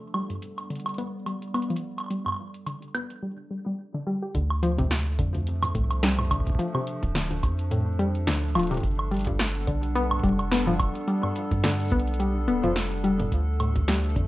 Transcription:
Already playing: ambient pad G3 B3 D4 A4
0.14 synth arpeggio sound G3, high woodblock
0.30 synth arpeggio sound G2, closed hi-hat
0.42 closed hi-hat
0.58 closed hi-hat, high woodblock
0.70 synth arpeggio sound D3, closed hi-hat
0.75 closed hi-hat
0.80 closed hi-hat
0.86 closed hi-hat, high woodblock
0.89 closed hi-hat
0.94 closed hi-hat
0.98 synth arpeggio sound B3, closed hi-hat
1.26 synth arpeggio sound G3, closed hi-hat, high woodblock
1.42 closed hi-hat
1.54 synth arpeggio sound B3, closed hi-hat, high woodblock
1.62 closed hi-hat
1.70 synth arpeggio sound F3, closed hi-hat
1.76 closed hi-hat
1.98 closed hi-hat, high woodblock
2.00 high woodblock
2.04 high woodblock
2.06 high woodblock
2.08 synth arpeggio sound G3, closed hi-hat, high woodblock
2.26 synth arpeggio sound G2, high woodblock
2.28 high woodblock
2.34 high woodblock
2.36 high woodblock
2.54 closed hi-hat
2.67 synth arpeggio sound D3, closed hi-hat, high woodblock
2.82 closed hi-hat
2.95 synth arpeggio sound B3, closed hi-hat, high woodblock
3.10 closed hi-hat
3.23 synth arpeggio sound G3
3.51 synth arpeggio sound G3
3.66 synth arpeggio sound G3
3.94 synth arpeggio sound D3
4.07 synth arpeggio sound G3
4.22 synth arpeggio sound G4
4.35 analog synth bass D2, synth arpeggio sound D3, ambient pad F3 A3 D4 A4, kick, closed hi-hat
4.50 high woodblock
4.63 synth arpeggio sound F3, closed hi-hat
4.78 synth arpeggio sound C3, kick, closed hi-hat, mid tom
4.91 snare, closed hi-hat
5.07 closed hi-hat
5.19 analog synth bass F2, synth arpeggio sound D3, kick, closed hi-hat
5.34 synth arpeggio sound D2, closed hi-hat
5.47 closed hi-hat
5.63 mid tom, cabasa, high woodblock
5.75 analog synth bass C2, synth arpeggio sound A2, kick, closed hi-hat
5.91 closed hi-hat, high woodblock
6.03 synth arpeggio sound G3, snare, closed hi-hat
6.19 mid tom, high woodblock
6.31 synth arpeggio sound D3, kick, closed hi-hat, high woodblock
6.36 kick
6.40 kick
6.47 kick, closed hi-hat
6.50 kick
6.55 kick
6.59 synth arpeggio sound F3, closed hi-hat
6.75 synth arpeggio sound C3, high woodblock
6.87 closed hi-hat
7.03 analog synth bass D1, kick, closed hi-hat, mid tom
7.15 synth arpeggio sound D3, snare, closed hi-hat
7.31 synth arpeggio sound D2, closed hi-hat, cabasa
7.43 analog synth bass F2, kick, closed hi-hat, high woodblock
7.59 closed hi-hat
7.71 synth arpeggio sound A2, closed hi-hat
7.99 synth arpeggio sound G3, closed hi-hat
8.15 closed hi-hat
8.27 analog synth bass D2, synth arpeggio sound D3, snare, closed hi-hat
8.55 analog synth bass D1, synth arpeggio sound F3, closed hi-hat, high woodblock
8.59 closed hi-hat
8.63 closed hi-hat
8.67 synth arpeggio sound C3, closed hi-hat
8.71 closed hi-hat
8.74 closed hi-hat
8.77 closed hi-hat, mid tom
8.80 analog synth bass G1, ambient pad B3, kick, closed hi-hat
8.83 ambient pad G3, closed hi-hat
8.87 closed hi-hat
8.91 closed hi-hat
8.95 closed hi-hat, high woodblock
9.11 synth arpeggio sound G3, closed hi-hat
9.14 closed hi-hat
9.17 closed hi-hat
9.19 closed hi-hat
9.21 closed hi-hat
9.24 closed hi-hat
9.27 synth arpeggio sound G2, kick, closed hi-hat, mid tom
9.39 snare, closed hi-hat
9.55 closed hi-hat
9.67 analog synth bass B1, synth arpeggio sound D3, kick, closed hi-hat
9.83 closed hi-hat
9.95 synth arpeggio sound B3, closed hi-hat
10.11 mid tom, high woodblock
10.19 mid tom
10.23 analog synth bass F1, synth arpeggio sound G3, kick, closed hi-hat
10.29 mid tom
10.39 closed hi-hat, high woodblock
10.52 synth arpeggio sound B3, snare, closed hi-hat
10.67 synth arpeggio sound F3, mid tom
10.80 kick, closed hi-hat, high woodblock
10.95 closed hi-hat
11.08 synth arpeggio sound G3, closed hi-hat
11.23 synth arpeggio sound G2, high woodblock
11.36 closed hi-hat
11.51 analog synth bass G2, kick, closed hi-hat, mid tom
11.64 synth arpeggio sound D3, snare, closed hi-hat
11.79 closed hi-hat, cabasa
11.81 cabasa
11.86 cabasa
11.88 cabasa
11.90 analog synth bass B1, synth arpeggio sound B3, kick, closed hi-hat, cabasa
12.00 closed hi-hat
12.07 closed hi-hat
12.14 closed hi-hat
12.20 synth arpeggio sound G3, closed hi-hat
12.48 analog synth bass D1, synth arpeggio sound B3, closed hi-hat
12.63 analog synth bass F1, synth arpeggio sound F3, closed hi-hat, mid tom
12.76 snare, closed hi-hat
12.92 closed hi-hat
13.04 synth arpeggio sound G3, closed hi-hat
13.20 synth arpeggio sound G2, closed hi-hat, mid tom
13.32 analog synth bass D2, ambient pad F3 A3, kick, closed hi-hat
13.60 synth arpeggio sound A2, closed hi-hat, high woodblock
13.76 kick, closed hi-hat, mid tom
13.88 synth arpeggio sound G3, snare, closed hi-hat
14.04 closed hi-hat
14.16 analog synth bass F2, synth arpeggio sound D3, kick, closed hi-hat

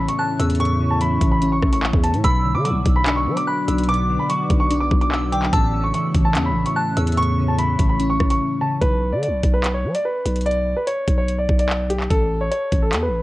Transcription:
Already playing: synth keys A2 C#3 E3 C#4, ambient pad A3 C#4 E4 C#5, synth bell E6
0.08 grand piano C#6, closed hi-hat
0.18 grand piano A5, synth bell F#6
0.39 808-style bass E2, synth keys C#3, synth bell E6, closed hi-hat
0.50 closed hi-hat
0.55 closed hi-hat
0.60 synth keys A2, grand piano C#6, synth bell C#6, closed hi-hat
0.65 closed hi-hat
0.80 synth keys C#3
0.91 grand piano A5
1.01 synth keys E3, grand piano B5, closed hi-hat
1.21 808-style bass A1, kick, closed hi-hat
1.32 grand piano B5
1.42 synth keys C#4, closed hi-hat
1.52 grand piano C#6
1.62 808-style bass A1, kick, cross-stick
1.73 grand piano C#6, closed hi-hat
1.83 clap
1.93 808-style bass E2, kick
2.04 synth keys C#3, grand piano A5, closed hi-hat
2.14 808-style bass A2, closed hi-hat
2.24 808-style bass B1, synth keys B2, ambient pad B3 D4 F#4 D5, grand piano B5, synth bell E6, kick, closed hi-hat
2.45 synth keys D3
2.55 808-style bass D3, grand piano D6
2.65 synth keys F#3, grand piano D6, closed hi-hat
2.70 808-style bass B1
2.86 808-style bass B1, kick, closed hi-hat
2.96 grand piano B5
3.06 synth keys D4, clap, closed hi-hat
3.16 grand piano C#6
3.27 808-style bass F#3
3.37 grand piano D6, closed hi-hat
3.47 grand piano B5, synth bell F#6
3.68 808-style bass B1, synth keys D3, synth bell E6, closed hi-hat
3.78 closed hi-hat
3.83 closed hi-hat
3.88 synth keys B2, grand piano D6, synth bell D6, closed hi-hat
3.94 closed hi-hat
4.09 synth keys D3
4.19 grand piano B5
4.29 synth keys F#3, grand piano C#6, closed hi-hat
4.50 808-style bass B1, kick, closed hi-hat
4.60 grand piano C#6
4.71 synth keys D4, closed hi-hat
4.81 grand piano D6
4.91 808-style bass B1, kick
5.01 grand piano D6, closed hi-hat
5.12 synth bell E6, clap
5.32 synth keys D3, grand piano G5, synth bell D6, closed hi-hat
5.43 clap
5.53 808-style bass A1, synth keys A2, ambient pad A3 C#4 E4 C#5, grand piano A5, synth bell E6, kick, closed hi-hat
5.73 synth keys C#3
5.84 grand piano C#6
5.94 synth keys E3, grand piano C#6, closed hi-hat
6.15 808-style bass A1, kick, closed hi-hat
6.25 grand piano A5
6.35 808-style bass E2, synth keys C#4, clap, closed hi-hat
6.45 grand piano B5
6.51 808-style bass A1
6.66 grand piano C#6, closed hi-hat
6.76 grand piano A5, synth bell F#6
6.97 808-style bass E2, synth keys C#3, synth bell E6, closed hi-hat
7.07 closed hi-hat
7.12 closed hi-hat
7.17 synth keys A2, grand piano C#6, synth bell C#6, closed hi-hat
7.22 closed hi-hat
7.38 synth keys C#3
7.48 grand piano A5
7.58 synth keys E3, grand piano B5, closed hi-hat
7.79 808-style bass A1, kick, closed hi-hat
7.89 grand piano B5
7.99 synth keys C#4, closed hi-hat
8.09 grand piano C#6
8.20 808-style bass A1, kick, cross-stick
8.30 grand piano C#6, closed hi-hat
8.61 synth keys C#3, grand piano A5
8.81 808-style bass B1, grand piano B4, kick, closed hi-hat
9.12 808-style bass D3, grand piano D5
9.22 grand piano D5, closed hi-hat
9.28 808-style bass B1
9.43 808-style bass B1, kick, closed hi-hat
9.53 grand piano B4
9.64 clap, closed hi-hat
9.74 grand piano C#5
9.84 808-style bass F#3
9.95 grand piano D5, closed hi-hat
10.05 grand piano B4
10.26 808-style bass B1, closed hi-hat
10.36 closed hi-hat
10.41 closed hi-hat
10.46 grand piano D5, closed hi-hat
10.51 closed hi-hat
10.77 grand piano B4
10.87 grand piano C#5, closed hi-hat
11.08 808-style bass B1, kick, closed hi-hat
11.18 grand piano C#5
11.28 closed hi-hat
11.38 grand piano D5
11.49 808-style bass B1, kick
11.59 grand piano D5, closed hi-hat
11.69 clap
11.90 grand piano G4, closed hi-hat
12.00 clap
12.10 808-style bass A1, grand piano A4, kick, closed hi-hat
12.41 grand piano C#5
12.51 grand piano C#5, closed hi-hat
12.72 808-style bass A1, kick, closed hi-hat
12.82 grand piano A4
12.93 808-style bass E2, clap, closed hi-hat
13.03 grand piano B4
13.08 808-style bass A1

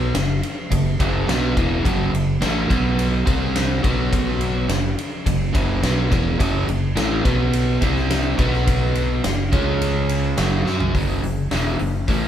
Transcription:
Already playing: fingered electric bass B1, overdriven electric guitar B2 F#3 B3
0.14 fingered electric bass F#1, overdriven electric guitar F#2 C#3, snare, ride
0.43 ride
0.71 fingered electric bass F#1, overdriven electric guitar F#2 C#3, kick, ride
1.00 fingered electric bass F#1, overdriven electric guitar F#2 C#3 F#3, kick, ride
1.27 fingered electric bass B1, overdriven electric guitar B2 F#3 B3, snare, ride
1.56 fingered electric bass E1, overdriven electric guitar E2 B2 E3, kick, ride
1.84 fingered electric bass F#1, overdriven electric guitar F#2 C#3 F#3, kick, ride
2.13 fingered electric bass F#1, overdriven electric guitar F#2 C#3, ride
2.41 fingered electric bass A1, overdriven electric guitar A2 E3 A3, snare, ride
2.69 fingered electric bass B1, overdriven electric guitar B2 F#3 B3, kick, ride
2.99 ride
3.26 fingered electric bass C2, overdriven electric guitar C3 G3 C4, kick, ride
3.56 snare, ride
3.83 fingered electric bass B1, overdriven electric guitar B2 F#3 B3, kick, ride
4.13 kick, ride
4.41 ride
4.67 fingered electric bass F#1, overdriven electric guitar F#2 C#3, snare, ride
4.98 ride
5.26 fingered electric bass F#1, overdriven electric guitar F#2 C#3, kick, ride
5.53 fingered electric bass F#1, overdriven electric guitar F#2 C#3 F#3, kick, ride
5.82 fingered electric bass B1, overdriven electric guitar B2 F#3 B3, snare, ride
6.10 fingered electric bass E1, overdriven electric guitar E2 B2 E3, kick, ride
6.39 fingered electric bass F#1, overdriven electric guitar F#2 C#3 F#3, kick, ride
6.68 fingered electric bass F#1, overdriven electric guitar F#2 C#3, ride
6.96 fingered electric bass A1, overdriven electric guitar A2 E3 A3, snare, ride
7.23 fingered electric bass B1, overdriven electric guitar B2 F#3 B3, kick, ride
7.53 ride
7.81 fingered electric bass C2, overdriven electric guitar C3 G3 C4, kick, ride
7.96 snare
8.11 snare, ride
8.37 fingered electric bass B1, overdriven electric guitar B2 F#3 B3, kick, ride
8.53 snare
8.67 kick, ride
8.95 ride
9.24 fingered electric bass F#1, overdriven electric guitar F#2 C#3, snare, ride
9.52 fingered electric bass C#2, overdriven electric guitar C#3 G#3 C#4, kick, ride
9.82 ride
10.09 ride
10.37 fingered electric bass F#1, overdriven electric guitar F#2 C#3 F#3, snare, ride
10.65 fingered electric bass F#2, overdriven electric guitar F#3 C#4 F#4, snare
10.80 floor tom
10.94 fingered electric bass F#1, overdriven electric guitar F#2 C#3 F#3, kick, open hi-hat
11.22 fingered electric bass F#1, overdriven electric guitar F#2 C#3, open hi-hat
11.51 fingered electric bass E1, overdriven electric guitar E2 B2 E3, snare, open hi-hat
11.79 fingered electric bass F#1, overdriven electric guitar F#2 C#3, open hi-hat
12.08 fingered electric bass A1, overdriven electric guitar A2 E3 A3, kick, open hi-hat

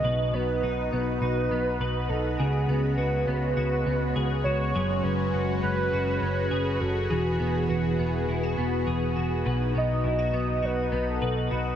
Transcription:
Already playing: clean electric guitar B3 F#4, soft synth lead D#5
0.04 picked electric bass B1, clean electric guitar B2 B4, analog synth pad B3 D#4 F#4
0.33 picked electric bass B1, clean electric guitar B3, soft synth lead B4
0.62 picked electric bass B1, clean electric guitar D#4
0.93 picked electric bass B1, clean electric guitar B3, soft synth lead B4
1.21 picked electric bass B1, clean electric guitar D#4
1.51 picked electric bass B1, clean electric guitar B3
1.80 picked electric bass B1, clean electric guitar B4
2.09 picked electric bass B1, clean electric guitar D#4, soft synth lead A4
2.38 picked electric bass C#2, clean electric guitar C#3 G#4, analog synth pad C#3 G#3, soft synth lead G#4
2.69 picked electric bass C#2, clean electric guitar B3
2.97 picked electric bass C#2, clean electric guitar F#4, soft synth lead B4
3.27 picked electric bass C#2, clean electric guitar B3
3.57 picked electric bass C#2, clean electric guitar F#4
3.86 picked electric bass C#2, clean electric guitar B3
4.16 picked electric bass C#2, clean electric guitar G#4
4.44 picked electric bass C#2, clean electric guitar F#4, soft synth lead C#5
4.74 picked electric bass F#1, clean electric guitar F#3 G#4, analog synth pad C#4
5.04 picked electric bass F#1, clean electric guitar C#4, soft synth lead B4
5.33 picked electric bass F#1, clean electric guitar F#4
5.62 picked electric bass F#1, clean electric guitar C#4, soft synth lead B4
5.93 picked electric bass F#1, clean electric guitar F#4
6.22 picked electric bass F#1, clean electric guitar C#4
6.51 picked electric bass F#1, clean electric guitar G#4
6.80 picked electric bass F#1, clean electric guitar F#4, soft synth lead A4
7.09 picked electric bass E1, clean electric guitar E3 G#4, analog synth pad E3 B3 G#4, soft synth lead G#4
7.40 picked electric bass E1, clean electric guitar B3
7.68 picked electric bass E1, clean electric guitar F#4, soft synth lead B4
7.99 picked electric bass E1, clean electric guitar B3
8.28 picked electric bass E1, clean electric guitar E4
8.43 clean electric guitar F#4
8.58 picked electric bass E1, clean electric guitar B3
8.87 picked electric bass E1, clean electric guitar G#4
9.16 picked electric bass E1, clean electric guitar F#4
9.46 picked electric bass B1, clean electric guitar B2 B4, analog synth pad D#4
9.75 picked electric bass B1, clean electric guitar B3, soft synth lead D#5
10.04 picked electric bass B1, clean electric guitar E4, soft synth lead D#5
10.19 clean electric guitar F#4
10.33 picked electric bass B1, clean electric guitar B3
10.63 picked electric bass B1, clean electric guitar F#4, soft synth lead B4
10.92 picked electric bass B1, clean electric guitar B3
11.09 soft synth lead A4
11.22 picked electric bass B1, clean electric guitar B4
11.51 picked electric bass B1, clean electric guitar F#4, soft synth lead B4

